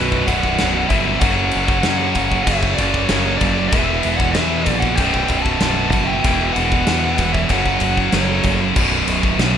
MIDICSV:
0, 0, Header, 1, 7, 480
1, 0, Start_track
1, 0, Key_signature, 2, "minor"
1, 0, Tempo, 628272
1, 935, Time_signature, 4, 2, 24, 8
1, 7316, End_track
2, 0, Start_track
2, 0, Title_t, "Lead electric guitar"
2, 0, Program_c, 0, 29
2, 0, Note_on_c, 0, 71, 89
2, 209, Note_on_c, 0, 78, 103
2, 218, Note_off_c, 0, 71, 0
2, 661, Note_off_c, 0, 78, 0
2, 680, Note_on_c, 0, 76, 93
2, 913, Note_on_c, 0, 78, 95
2, 935, Note_off_c, 0, 76, 0
2, 1863, Note_on_c, 0, 76, 101
2, 1913, Note_off_c, 0, 78, 0
2, 2095, Note_off_c, 0, 76, 0
2, 2098, Note_on_c, 0, 74, 91
2, 2333, Note_off_c, 0, 74, 0
2, 2336, Note_on_c, 0, 73, 88
2, 2578, Note_off_c, 0, 73, 0
2, 2581, Note_on_c, 0, 74, 99
2, 2811, Note_off_c, 0, 74, 0
2, 2814, Note_on_c, 0, 76, 103
2, 3169, Note_off_c, 0, 76, 0
2, 3181, Note_on_c, 0, 78, 104
2, 3292, Note_on_c, 0, 76, 103
2, 3309, Note_off_c, 0, 78, 0
2, 3647, Note_off_c, 0, 76, 0
2, 3665, Note_on_c, 0, 78, 93
2, 3785, Note_off_c, 0, 78, 0
2, 3785, Note_on_c, 0, 79, 108
2, 4140, Note_off_c, 0, 79, 0
2, 4143, Note_on_c, 0, 81, 107
2, 4632, Note_off_c, 0, 81, 0
2, 4635, Note_on_c, 0, 79, 114
2, 4987, Note_off_c, 0, 79, 0
2, 4990, Note_on_c, 0, 78, 110
2, 5601, Note_on_c, 0, 76, 92
2, 5622, Note_off_c, 0, 78, 0
2, 5732, Note_on_c, 0, 78, 94
2, 5733, Note_off_c, 0, 76, 0
2, 6213, Note_on_c, 0, 73, 79
2, 6229, Note_off_c, 0, 78, 0
2, 6550, Note_off_c, 0, 73, 0
2, 7316, End_track
3, 0, Start_track
3, 0, Title_t, "Lead electric guitar"
3, 0, Program_c, 1, 29
3, 0, Note_on_c, 1, 66, 72
3, 198, Note_off_c, 1, 66, 0
3, 211, Note_on_c, 1, 74, 78
3, 662, Note_off_c, 1, 74, 0
3, 676, Note_on_c, 1, 73, 79
3, 908, Note_off_c, 1, 73, 0
3, 924, Note_on_c, 1, 73, 85
3, 1859, Note_off_c, 1, 73, 0
3, 1880, Note_on_c, 1, 73, 81
3, 2110, Note_off_c, 1, 73, 0
3, 2118, Note_on_c, 1, 71, 77
3, 2349, Note_on_c, 1, 70, 81
3, 2350, Note_off_c, 1, 71, 0
3, 2577, Note_on_c, 1, 71, 80
3, 2585, Note_off_c, 1, 70, 0
3, 2810, Note_off_c, 1, 71, 0
3, 2819, Note_on_c, 1, 71, 92
3, 3169, Note_off_c, 1, 71, 0
3, 3172, Note_on_c, 1, 74, 83
3, 3286, Note_off_c, 1, 74, 0
3, 3289, Note_on_c, 1, 71, 84
3, 3631, Note_off_c, 1, 71, 0
3, 3634, Note_on_c, 1, 74, 90
3, 3750, Note_off_c, 1, 74, 0
3, 3760, Note_on_c, 1, 74, 94
3, 4125, Note_on_c, 1, 78, 92
3, 4148, Note_off_c, 1, 74, 0
3, 4600, Note_off_c, 1, 78, 0
3, 4618, Note_on_c, 1, 76, 90
3, 4971, Note_off_c, 1, 76, 0
3, 4982, Note_on_c, 1, 71, 86
3, 5569, Note_off_c, 1, 71, 0
3, 5596, Note_on_c, 1, 73, 75
3, 5717, Note_off_c, 1, 73, 0
3, 5730, Note_on_c, 1, 73, 90
3, 6183, Note_off_c, 1, 73, 0
3, 6209, Note_on_c, 1, 69, 66
3, 6547, Note_off_c, 1, 69, 0
3, 7316, End_track
4, 0, Start_track
4, 0, Title_t, "Distorted electric guitar"
4, 0, Program_c, 2, 30
4, 0, Note_on_c, 2, 35, 99
4, 0, Note_on_c, 2, 42, 96
4, 0, Note_on_c, 2, 47, 109
4, 198, Note_off_c, 2, 35, 0
4, 199, Note_off_c, 2, 47, 0
4, 200, Note_off_c, 2, 42, 0
4, 208, Note_on_c, 2, 47, 89
4, 221, Note_on_c, 2, 42, 78
4, 235, Note_on_c, 2, 35, 70
4, 438, Note_off_c, 2, 47, 0
4, 442, Note_off_c, 2, 35, 0
4, 444, Note_off_c, 2, 42, 0
4, 451, Note_on_c, 2, 35, 76
4, 463, Note_on_c, 2, 42, 86
4, 477, Note_on_c, 2, 47, 88
4, 914, Note_off_c, 2, 42, 0
4, 919, Note_off_c, 2, 35, 0
4, 924, Note_on_c, 2, 42, 86
4, 931, Note_off_c, 2, 47, 0
4, 935, Note_on_c, 2, 49, 93
4, 946, Note_on_c, 2, 54, 107
4, 2115, Note_off_c, 2, 42, 0
4, 2120, Note_off_c, 2, 49, 0
4, 2121, Note_off_c, 2, 54, 0
4, 2130, Note_on_c, 2, 54, 89
4, 2145, Note_on_c, 2, 49, 84
4, 2156, Note_on_c, 2, 42, 76
4, 2358, Note_off_c, 2, 54, 0
4, 2365, Note_off_c, 2, 42, 0
4, 2366, Note_off_c, 2, 49, 0
4, 2374, Note_on_c, 2, 42, 81
4, 2384, Note_on_c, 2, 49, 81
4, 2395, Note_on_c, 2, 54, 88
4, 2841, Note_off_c, 2, 42, 0
4, 2846, Note_off_c, 2, 49, 0
4, 2851, Note_off_c, 2, 54, 0
4, 2860, Note_on_c, 2, 40, 97
4, 2873, Note_on_c, 2, 47, 104
4, 2884, Note_on_c, 2, 52, 110
4, 3804, Note_off_c, 2, 40, 0
4, 3811, Note_off_c, 2, 47, 0
4, 3816, Note_off_c, 2, 52, 0
4, 3816, Note_on_c, 2, 35, 86
4, 3826, Note_on_c, 2, 42, 99
4, 3839, Note_on_c, 2, 47, 101
4, 4762, Note_off_c, 2, 35, 0
4, 4766, Note_on_c, 2, 40, 98
4, 4767, Note_off_c, 2, 42, 0
4, 4769, Note_off_c, 2, 47, 0
4, 4778, Note_on_c, 2, 47, 108
4, 4792, Note_on_c, 2, 52, 104
4, 5717, Note_off_c, 2, 40, 0
4, 5724, Note_off_c, 2, 47, 0
4, 5730, Note_off_c, 2, 52, 0
4, 5730, Note_on_c, 2, 42, 93
4, 5742, Note_on_c, 2, 49, 99
4, 5751, Note_on_c, 2, 54, 101
4, 6679, Note_off_c, 2, 42, 0
4, 6685, Note_off_c, 2, 49, 0
4, 6697, Note_on_c, 2, 35, 95
4, 6704, Note_on_c, 2, 42, 96
4, 6713, Note_off_c, 2, 54, 0
4, 6716, Note_on_c, 2, 47, 108
4, 7316, Note_off_c, 2, 35, 0
4, 7316, Note_off_c, 2, 42, 0
4, 7316, Note_off_c, 2, 47, 0
4, 7316, End_track
5, 0, Start_track
5, 0, Title_t, "Distorted electric guitar"
5, 0, Program_c, 3, 30
5, 688, Note_on_c, 3, 47, 94
5, 704, Note_on_c, 3, 42, 90
5, 705, Note_on_c, 3, 35, 77
5, 917, Note_off_c, 3, 47, 0
5, 920, Note_off_c, 3, 42, 0
5, 926, Note_off_c, 3, 35, 0
5, 2611, Note_on_c, 3, 54, 99
5, 2614, Note_on_c, 3, 49, 86
5, 2622, Note_on_c, 3, 42, 81
5, 2839, Note_off_c, 3, 54, 0
5, 2840, Note_off_c, 3, 49, 0
5, 2841, Note_off_c, 3, 42, 0
5, 7316, End_track
6, 0, Start_track
6, 0, Title_t, "Fingered electric bass"
6, 0, Program_c, 4, 33
6, 0, Note_on_c, 4, 23, 90
6, 198, Note_off_c, 4, 23, 0
6, 209, Note_on_c, 4, 23, 94
6, 438, Note_off_c, 4, 23, 0
6, 467, Note_on_c, 4, 23, 93
6, 680, Note_off_c, 4, 23, 0
6, 684, Note_on_c, 4, 31, 96
6, 916, Note_off_c, 4, 31, 0
6, 923, Note_on_c, 4, 30, 99
6, 1155, Note_off_c, 4, 30, 0
6, 1185, Note_on_c, 4, 30, 90
6, 1406, Note_off_c, 4, 30, 0
6, 1417, Note_on_c, 4, 42, 90
6, 1642, Note_off_c, 4, 42, 0
6, 1647, Note_on_c, 4, 30, 95
6, 1877, Note_off_c, 4, 30, 0
6, 1882, Note_on_c, 4, 30, 91
6, 2114, Note_off_c, 4, 30, 0
6, 2132, Note_on_c, 4, 30, 93
6, 2360, Note_off_c, 4, 30, 0
6, 2367, Note_on_c, 4, 30, 103
6, 2597, Note_off_c, 4, 30, 0
6, 2605, Note_on_c, 4, 30, 103
6, 2836, Note_off_c, 4, 30, 0
6, 2843, Note_on_c, 4, 28, 99
6, 3075, Note_off_c, 4, 28, 0
6, 3092, Note_on_c, 4, 28, 94
6, 3320, Note_off_c, 4, 28, 0
6, 3342, Note_on_c, 4, 40, 87
6, 3563, Note_off_c, 4, 40, 0
6, 3567, Note_on_c, 4, 34, 94
6, 3798, Note_off_c, 4, 34, 0
6, 3804, Note_on_c, 4, 23, 96
6, 4036, Note_off_c, 4, 23, 0
6, 4042, Note_on_c, 4, 23, 90
6, 4275, Note_off_c, 4, 23, 0
6, 4281, Note_on_c, 4, 23, 97
6, 4515, Note_off_c, 4, 23, 0
6, 4533, Note_on_c, 4, 30, 94
6, 4761, Note_off_c, 4, 30, 0
6, 4771, Note_on_c, 4, 28, 105
6, 5000, Note_off_c, 4, 28, 0
6, 5009, Note_on_c, 4, 28, 96
6, 5239, Note_off_c, 4, 28, 0
6, 5247, Note_on_c, 4, 40, 93
6, 5478, Note_off_c, 4, 40, 0
6, 5490, Note_on_c, 4, 28, 90
6, 5720, Note_off_c, 4, 28, 0
6, 5727, Note_on_c, 4, 30, 92
6, 5958, Note_off_c, 4, 30, 0
6, 5969, Note_on_c, 4, 30, 89
6, 6199, Note_off_c, 4, 30, 0
6, 6209, Note_on_c, 4, 30, 97
6, 6439, Note_off_c, 4, 30, 0
6, 6450, Note_on_c, 4, 30, 99
6, 6679, Note_off_c, 4, 30, 0
6, 6694, Note_on_c, 4, 23, 102
6, 6922, Note_off_c, 4, 23, 0
6, 6931, Note_on_c, 4, 23, 91
6, 7160, Note_off_c, 4, 23, 0
6, 7169, Note_on_c, 4, 35, 87
6, 7316, Note_off_c, 4, 35, 0
6, 7316, End_track
7, 0, Start_track
7, 0, Title_t, "Drums"
7, 92, Note_on_c, 9, 36, 85
7, 168, Note_off_c, 9, 36, 0
7, 212, Note_on_c, 9, 36, 83
7, 214, Note_on_c, 9, 51, 78
7, 289, Note_off_c, 9, 36, 0
7, 290, Note_off_c, 9, 51, 0
7, 332, Note_on_c, 9, 36, 82
7, 408, Note_off_c, 9, 36, 0
7, 446, Note_on_c, 9, 51, 104
7, 448, Note_on_c, 9, 38, 115
7, 522, Note_off_c, 9, 51, 0
7, 524, Note_off_c, 9, 38, 0
7, 687, Note_on_c, 9, 51, 75
7, 691, Note_on_c, 9, 36, 89
7, 763, Note_off_c, 9, 51, 0
7, 767, Note_off_c, 9, 36, 0
7, 925, Note_on_c, 9, 51, 107
7, 929, Note_on_c, 9, 36, 127
7, 1002, Note_off_c, 9, 51, 0
7, 1006, Note_off_c, 9, 36, 0
7, 1157, Note_on_c, 9, 51, 76
7, 1234, Note_off_c, 9, 51, 0
7, 1287, Note_on_c, 9, 36, 101
7, 1363, Note_off_c, 9, 36, 0
7, 1399, Note_on_c, 9, 51, 100
7, 1400, Note_on_c, 9, 38, 114
7, 1475, Note_off_c, 9, 51, 0
7, 1477, Note_off_c, 9, 38, 0
7, 1642, Note_on_c, 9, 51, 80
7, 1647, Note_on_c, 9, 36, 97
7, 1718, Note_off_c, 9, 51, 0
7, 1723, Note_off_c, 9, 36, 0
7, 1769, Note_on_c, 9, 36, 89
7, 1845, Note_off_c, 9, 36, 0
7, 1886, Note_on_c, 9, 51, 122
7, 1888, Note_on_c, 9, 36, 104
7, 1962, Note_off_c, 9, 51, 0
7, 1964, Note_off_c, 9, 36, 0
7, 2006, Note_on_c, 9, 36, 90
7, 2083, Note_off_c, 9, 36, 0
7, 2126, Note_on_c, 9, 51, 85
7, 2128, Note_on_c, 9, 36, 88
7, 2202, Note_off_c, 9, 51, 0
7, 2205, Note_off_c, 9, 36, 0
7, 2247, Note_on_c, 9, 36, 86
7, 2324, Note_off_c, 9, 36, 0
7, 2359, Note_on_c, 9, 51, 112
7, 2360, Note_on_c, 9, 38, 118
7, 2435, Note_off_c, 9, 51, 0
7, 2437, Note_off_c, 9, 38, 0
7, 2603, Note_on_c, 9, 51, 87
7, 2607, Note_on_c, 9, 36, 97
7, 2680, Note_off_c, 9, 51, 0
7, 2684, Note_off_c, 9, 36, 0
7, 2844, Note_on_c, 9, 51, 117
7, 2847, Note_on_c, 9, 36, 123
7, 2920, Note_off_c, 9, 51, 0
7, 2923, Note_off_c, 9, 36, 0
7, 3079, Note_on_c, 9, 51, 82
7, 3156, Note_off_c, 9, 51, 0
7, 3207, Note_on_c, 9, 36, 94
7, 3284, Note_off_c, 9, 36, 0
7, 3320, Note_on_c, 9, 51, 112
7, 3322, Note_on_c, 9, 38, 108
7, 3397, Note_off_c, 9, 51, 0
7, 3398, Note_off_c, 9, 38, 0
7, 3560, Note_on_c, 9, 51, 85
7, 3565, Note_on_c, 9, 36, 92
7, 3636, Note_off_c, 9, 51, 0
7, 3642, Note_off_c, 9, 36, 0
7, 3685, Note_on_c, 9, 36, 91
7, 3762, Note_off_c, 9, 36, 0
7, 3800, Note_on_c, 9, 51, 108
7, 3806, Note_on_c, 9, 36, 104
7, 3876, Note_off_c, 9, 51, 0
7, 3882, Note_off_c, 9, 36, 0
7, 3926, Note_on_c, 9, 36, 88
7, 4002, Note_off_c, 9, 36, 0
7, 4036, Note_on_c, 9, 51, 79
7, 4047, Note_on_c, 9, 36, 85
7, 4112, Note_off_c, 9, 51, 0
7, 4124, Note_off_c, 9, 36, 0
7, 4169, Note_on_c, 9, 36, 88
7, 4246, Note_off_c, 9, 36, 0
7, 4282, Note_on_c, 9, 51, 105
7, 4284, Note_on_c, 9, 38, 117
7, 4358, Note_off_c, 9, 51, 0
7, 4360, Note_off_c, 9, 38, 0
7, 4524, Note_on_c, 9, 51, 75
7, 4530, Note_on_c, 9, 36, 95
7, 4600, Note_off_c, 9, 51, 0
7, 4607, Note_off_c, 9, 36, 0
7, 4769, Note_on_c, 9, 51, 109
7, 4771, Note_on_c, 9, 36, 120
7, 4845, Note_off_c, 9, 51, 0
7, 4848, Note_off_c, 9, 36, 0
7, 5012, Note_on_c, 9, 51, 76
7, 5088, Note_off_c, 9, 51, 0
7, 5132, Note_on_c, 9, 36, 97
7, 5209, Note_off_c, 9, 36, 0
7, 5246, Note_on_c, 9, 51, 106
7, 5248, Note_on_c, 9, 38, 120
7, 5322, Note_off_c, 9, 51, 0
7, 5324, Note_off_c, 9, 38, 0
7, 5486, Note_on_c, 9, 51, 81
7, 5492, Note_on_c, 9, 36, 93
7, 5562, Note_off_c, 9, 51, 0
7, 5568, Note_off_c, 9, 36, 0
7, 5611, Note_on_c, 9, 36, 92
7, 5688, Note_off_c, 9, 36, 0
7, 5723, Note_on_c, 9, 51, 110
7, 5731, Note_on_c, 9, 36, 103
7, 5799, Note_off_c, 9, 51, 0
7, 5807, Note_off_c, 9, 36, 0
7, 5849, Note_on_c, 9, 36, 83
7, 5926, Note_off_c, 9, 36, 0
7, 5959, Note_on_c, 9, 51, 80
7, 5969, Note_on_c, 9, 36, 83
7, 6036, Note_off_c, 9, 51, 0
7, 6046, Note_off_c, 9, 36, 0
7, 6092, Note_on_c, 9, 36, 83
7, 6169, Note_off_c, 9, 36, 0
7, 6206, Note_on_c, 9, 51, 107
7, 6208, Note_on_c, 9, 38, 112
7, 6283, Note_off_c, 9, 51, 0
7, 6284, Note_off_c, 9, 38, 0
7, 6444, Note_on_c, 9, 51, 80
7, 6452, Note_on_c, 9, 36, 91
7, 6520, Note_off_c, 9, 51, 0
7, 6528, Note_off_c, 9, 36, 0
7, 6692, Note_on_c, 9, 49, 109
7, 6694, Note_on_c, 9, 36, 121
7, 6768, Note_off_c, 9, 49, 0
7, 6771, Note_off_c, 9, 36, 0
7, 6934, Note_on_c, 9, 51, 82
7, 7011, Note_off_c, 9, 51, 0
7, 7054, Note_on_c, 9, 36, 97
7, 7130, Note_off_c, 9, 36, 0
7, 7176, Note_on_c, 9, 51, 104
7, 7177, Note_on_c, 9, 38, 117
7, 7252, Note_off_c, 9, 51, 0
7, 7254, Note_off_c, 9, 38, 0
7, 7316, End_track
0, 0, End_of_file